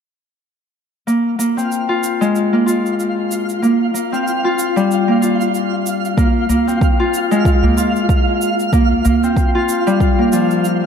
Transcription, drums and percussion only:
1.08 cabasa soft
1.40 cabasa medium
1.59 cabasa soft
1.72 cabasa soft
2.04 cabasa medium
2.22 cabasa soft
2.36 cabasa soft
2.68 cabasa medium
2.86 cabasa soft
3.00 cabasa soft
3.31 cabasa medium
3.49 cabasa soft
3.64 cabasa soft
3.95 cabasa medium
4.14 cabasa soft
4.28 cabasa soft
4.59 cabasa medium
4.77 cabasa soft
4.91 cabasa soft
5.23 cabasa medium
5.41 cabasa soft
5.55 cabasa soft
5.86 cabasa medium
6.05 cabasa soft
6.18 kick medium
6.18 cabasa soft
6.49 udu medium
6.49 cabasa medium
6.69 cabasa soft
6.81 kick loud
6.81 cabasa soft
7.14 cabasa medium
7.32 cabasa soft
7.45 kick loud
7.45 cabasa soft
7.63 udu medium
7.78 cabasa medium
7.96 cabasa soft
8.09 kick loud
8.09 cabasa soft
8.42 cabasa medium
8.59 cabasa soft
8.73 kick medium
8.73 cabasa soft
8.91 udu medium
9.05 udu medium
9.05 cabasa medium
9.24 cabasa soft
9.37 kick medium
9.37 cabasa soft
9.69 cabasa medium
9.87 cabasa soft
10.00 kick loud
10.00 cabasa soft
10.33 cabasa medium
10.51 cabasa soft
10.65 cabasa soft

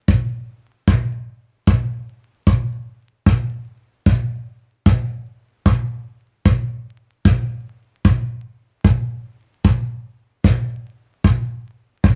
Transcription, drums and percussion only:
0.08 kick medium
0.88 kick medium
1.67 kick medium
2.47 kick medium
3.26 kick medium
4.06 kick medium
4.86 kick medium
5.66 kick medium
6.45 kick medium
7.25 kick medium
8.05 kick medium
8.85 kick medium
9.65 kick medium
10.44 kick medium
11.24 kick medium
12.04 kick medium

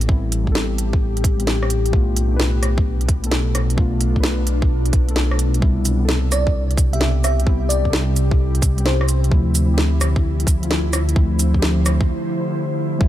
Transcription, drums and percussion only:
0.01 closed hi-hat soft
0.09 kick loud
0.32 closed hi-hat medium
0.47 kick medium
0.55 snare loud
0.78 closed hi-hat medium
0.93 kick loud
1.17 closed hi-hat soft
1.24 kick loud
1.24 closed hi-hat medium
1.40 closed hi-hat soft
1.47 snare loud
1.63 cross-stick medium
1.70 closed hi-hat medium
1.86 closed hi-hat soft
1.93 kick loud
2.17 closed hi-hat medium
2.40 snare loud
2.63 cross-stick medium
2.63 closed hi-hat medium
2.78 kick loud
3.01 closed hi-hat soft
3.09 kick loud
3.09 closed hi-hat medium
3.24 closed hi-hat soft
3.32 snare loud
3.55 cross-stick medium
3.55 closed hi-hat medium
3.70 closed hi-hat soft
3.78 kick loud
4.01 closed hi-hat medium
4.16 kick medium
4.23 snare loud
4.47 closed hi-hat medium
4.62 kick loud
4.86 closed hi-hat soft
4.93 kick loud
4.93 closed hi-hat medium
5.09 closed hi-hat soft
5.16 snare loud
5.31 cross-stick medium
5.39 closed hi-hat medium
5.54 closed hi-hat soft
5.62 kick loud
5.85 closed hi-hat medium
5.85 cabasa medium
6.09 snare loud
6.32 cross-stick medium
6.32 closed hi-hat medium
6.32 cabasa medium
6.47 kick loud
6.71 closed hi-hat soft
6.77 kick loud
6.77 closed hi-hat soft
6.77 cabasa medium
6.93 closed hi-hat soft
7.01 snare loud
7.24 cross-stick medium
7.24 closed hi-hat soft
7.24 cabasa medium
7.40 closed hi-hat soft
7.47 kick loud
7.70 closed hi-hat medium
7.70 cabasa medium
7.85 kick medium
7.93 snare loud
8.16 closed hi-hat medium
8.16 cabasa medium
8.31 kick loud
8.55 closed hi-hat soft
8.62 kick loud
8.62 closed hi-hat medium
8.62 cabasa medium
8.78 closed hi-hat soft
8.86 snare medium
9.01 cross-stick medium
9.09 closed hi-hat medium
9.09 cabasa medium
9.24 closed hi-hat soft
9.32 kick loud
9.55 closed hi-hat medium
9.55 cabasa medium
9.78 snare loud
10.01 cross-stick medium
10.01 closed hi-hat medium
10.01 cabasa medium
10.16 kick loud
10.40 closed hi-hat soft
10.47 kick loud
10.47 closed hi-hat medium
10.47 cabasa medium
10.63 closed hi-hat soft
10.71 snare medium
10.93 cross-stick medium
10.93 closed hi-hat medium
10.93 cabasa medium
11.09 closed hi-hat soft
11.16 kick loud
11.39 closed hi-hat medium
11.39 cabasa medium
11.54 kick medium
11.62 snare loud
11.86 cross-stick medium
11.86 closed hi-hat medium
11.86 cabasa medium
12.01 kick loud
13.01 kick loud

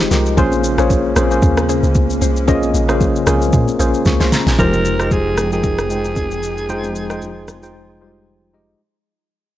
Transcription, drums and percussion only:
0.11 snare medium
0.11 high conga medium
0.11 shaker loud
0.26 shaker medium
0.37 kick loud
0.37 low conga medium
0.37 shaker medium
0.52 high conga medium
0.52 shaker medium
0.64 shaker loud
0.78 cross-stick medium
0.78 shaker medium
0.90 kick medium
0.90 low conga medium
0.90 shaker medium
1.16 cross-stick loud
1.16 high conga medium
1.16 low conga medium
1.16 shaker loud
1.31 shaker medium
1.42 kick loud
1.42 low conga medium
1.42 shaker medium
1.57 cross-stick loud
1.57 high conga medium
1.57 shaker medium
1.69 shaker medium
1.83 shaker medium
1.95 kick loud
1.95 high conga medium
1.95 shaker medium
2.10 shaker medium
2.21 high conga medium
2.21 shaker loud
2.37 shaker medium
2.48 kick loud
2.48 low conga medium
2.48 shaker medium
2.63 high conga medium
2.63 shaker medium
2.75 shaker medium
2.89 cross-stick medium
2.89 shaker medium
3.01 kick medium
3.01 low conga medium
3.01 shaker medium
3.16 shaker soft
3.27 cross-stick loud
3.27 high conga medium
3.27 low conga medium
3.27 shaker loud
3.42 shaker medium
3.53 kick loud
3.53 low conga medium
3.53 shaker medium
3.68 high conga medium
3.68 shaker medium
3.80 shaker medium
3.94 shaker medium
4.05 kick medium
4.05 snare medium
4.05 high conga medium
4.05 shaker medium
4.21 snare medium
4.21 shaker medium
4.32 snare medium
4.32 high conga medium
4.32 shaker loud
4.47 snare medium
4.47 shaker medium
4.59 kick loud
4.59 low conga medium
4.59 shaker medium
4.73 high conga medium
4.73 shaker medium
4.85 shaker medium
5.00 cross-stick medium
5.00 shaker medium
5.11 kick medium
5.11 low conga medium
5.11 shaker medium
5.37 cross-stick loud
5.37 high conga medium
5.37 low conga medium
5.37 shaker loud
5.52 shaker medium
5.63 kick loud
5.63 low conga medium
5.63 shaker medium
5.78 cross-stick loud
5.78 high conga medium
5.78 shaker medium
5.90 shaker medium
6.05 shaker medium
6.16 kick medium
6.16 high conga medium
6.16 shaker medium
6.31 shaker medium
6.43 shaker medium
6.58 shaker medium
6.69 low conga medium
6.69 shaker medium
6.84 high conga medium
6.84 shaker medium
6.96 shaker medium
7.10 cross-stick medium
7.10 shaker medium
7.22 low conga medium
7.22 shaker medium
7.48 cross-stick medium
7.48 high conga medium
7.48 low conga medium
7.48 shaker medium
7.63 shaker medium

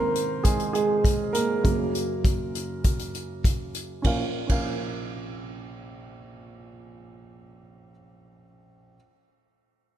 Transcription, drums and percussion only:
0.15 closed hi-hat medium
0.45 kick medium
0.45 closed hi-hat medium
0.60 closed hi-hat soft
0.75 closed hi-hat medium
1.05 kick medium
1.05 closed hi-hat medium
1.35 closed hi-hat medium
1.65 kick medium
1.65 closed hi-hat medium
1.95 closed hi-hat medium
2.25 kick medium
2.25 closed hi-hat medium
2.55 closed hi-hat medium
2.84 kick medium
2.84 closed hi-hat medium
2.99 closed hi-hat soft
3.15 closed hi-hat soft
3.44 kick medium
3.44 closed hi-hat medium
3.75 closed hi-hat medium
4.05 kick medium
4.05 ride medium
4.50 kick medium
4.50 ride medium

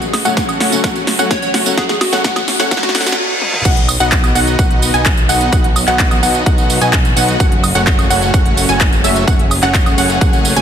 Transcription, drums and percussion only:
0.02 closed hi-hat soft
0.02 tambourine soft
0.14 snare medium
0.14 open hi-hat loud
0.14 high woodblock medium
0.25 closed hi-hat soft
0.25 tambourine medium
0.37 kick loud
0.37 snare medium
0.37 closed hi-hat medium
0.37 tambourine medium
0.49 closed hi-hat soft
0.49 tambourine soft
0.49 high woodblock medium
0.60 snare medium
0.60 open hi-hat loud
0.72 closed hi-hat soft
0.72 tambourine medium
0.84 kick loud
0.84 snare medium
0.84 closed hi-hat medium
0.84 tambourine medium
0.96 closed hi-hat soft
0.96 tambourine soft
1.07 snare medium
1.07 open hi-hat loud
1.19 closed hi-hat soft
1.19 tambourine medium
1.31 kick loud
1.31 snare medium
1.31 closed hi-hat medium
1.31 tambourine medium
1.42 closed hi-hat soft
1.42 tambourine soft
1.54 snare medium
1.54 open hi-hat loud
1.66 closed hi-hat soft
1.66 tambourine medium
1.78 kick loud
1.78 snare medium
1.78 closed hi-hat medium
1.78 tambourine medium
1.89 snare medium
1.89 closed hi-hat soft
1.89 tambourine soft
2.01 snare medium
2.01 open hi-hat loud
2.01 high woodblock medium
2.13 snare medium
2.13 closed hi-hat soft
2.13 tambourine medium
2.24 kick loud
2.24 snare loud
2.24 closed hi-hat medium
2.24 tambourine medium
2.36 snare medium
2.36 closed hi-hat soft
2.36 tambourine soft
2.36 high woodblock medium
2.48 snare loud
2.48 open hi-hat loud
2.60 snare medium
2.60 closed hi-hat soft
2.60 tambourine medium
2.71 kick loud
2.71 snare loud
2.71 closed hi-hat medium
2.71 tambourine medium
2.77 snare medium
2.83 snare medium
2.83 closed hi-hat soft
2.83 tambourine soft
2.89 snare medium
2.95 snare loud
2.95 open hi-hat loud
3.01 snare medium
3.07 snare medium
3.07 closed hi-hat soft
3.07 tambourine medium
3.12 snare medium
3.42 high tom medium
3.53 mid tom medium
3.65 kick loud
3.65 closed hi-hat medium
3.65 crash loud
3.65 tambourine soft
3.77 closed hi-hat soft
3.89 open hi-hat loud
3.89 tambourine medium
3.89 high woodblock medium
4.00 closed hi-hat soft
4.00 tambourine soft
4.12 kick loud
4.12 clap loud
4.12 closed hi-hat medium
4.12 tambourine soft
4.24 closed hi-hat soft
4.24 tambourine soft
4.24 high woodblock medium
4.35 open hi-hat loud
4.35 tambourine medium
4.47 closed hi-hat soft
4.47 tambourine soft
4.59 kick loud
4.59 closed hi-hat medium
4.59 tambourine soft
4.71 closed hi-hat soft
4.82 open hi-hat loud
4.82 tambourine medium
4.94 closed hi-hat soft
4.94 tambourine soft
5.06 kick loud
5.06 clap loud
5.06 closed hi-hat medium
5.06 tambourine soft
5.17 closed hi-hat soft
5.17 tambourine soft
5.29 open hi-hat loud
5.29 tambourine medium
5.41 closed hi-hat soft
5.41 tambourine soft
5.53 kick loud
5.53 closed hi-hat medium
5.53 tambourine soft
5.64 closed hi-hat soft
5.76 open hi-hat loud
5.76 tambourine medium
5.76 high woodblock medium
5.88 clap soft
5.88 closed hi-hat soft
5.88 tambourine soft
5.99 kick loud
5.99 clap loud
5.99 closed hi-hat medium
5.99 tambourine soft
6.11 closed hi-hat soft
6.11 tambourine soft
6.11 high woodblock medium
6.23 open hi-hat loud
6.23 tambourine medium
6.35 closed hi-hat soft
6.35 tambourine soft
6.46 kick loud
6.46 closed hi-hat medium
6.46 tambourine soft
6.58 closed hi-hat soft
6.58 tambourine soft
6.70 open hi-hat loud
6.70 tambourine medium
6.81 closed hi-hat soft
6.81 tambourine soft
6.93 kick loud
6.93 clap loud
6.93 closed hi-hat medium
6.93 tambourine soft
7.05 closed hi-hat soft
7.05 tambourine soft
7.17 open hi-hat loud
7.17 tambourine medium
7.28 closed hi-hat soft
7.28 tambourine soft
7.40 kick loud
7.40 closed hi-hat medium
7.40 tambourine soft
7.52 closed hi-hat soft
7.64 open hi-hat loud
7.64 tambourine medium
7.64 high woodblock medium
7.75 closed hi-hat soft
7.75 tambourine soft
7.87 kick loud
7.87 clap loud
7.87 closed hi-hat medium
7.87 tambourine soft
7.99 closed hi-hat soft
7.99 tambourine soft
7.99 high woodblock medium
8.10 open hi-hat loud
8.10 tambourine medium
8.22 closed hi-hat soft
8.22 tambourine soft
8.34 kick loud
8.34 closed hi-hat medium
8.34 tambourine soft
8.46 closed hi-hat soft
8.57 open hi-hat loud
8.57 tambourine medium
8.69 closed hi-hat soft
8.69 tambourine soft
8.81 kick loud
8.81 clap loud
8.81 closed hi-hat medium
8.81 tambourine soft
8.93 closed hi-hat soft
8.93 tambourine soft
9.04 open hi-hat loud
9.04 tambourine medium
9.16 closed hi-hat soft
9.16 tambourine soft
9.28 kick loud
9.28 closed hi-hat medium
9.28 tambourine soft
9.39 closed hi-hat soft
9.51 open hi-hat loud
9.51 tambourine medium
9.51 high woodblock medium
9.63 clap soft
9.63 closed hi-hat soft
9.63 tambourine soft
9.74 kick loud
9.74 clap loud
9.74 closed hi-hat medium
9.74 tambourine soft
9.86 closed hi-hat soft
9.86 tambourine soft
9.86 high woodblock medium
9.98 open hi-hat loud
9.98 tambourine medium
10.10 closed hi-hat soft
10.10 tambourine soft
10.21 kick loud
10.21 closed hi-hat medium
10.21 tambourine soft
10.33 closed hi-hat soft
10.33 tambourine soft
10.45 open hi-hat loud
10.45 tambourine medium
10.57 closed hi-hat soft
10.57 tambourine soft

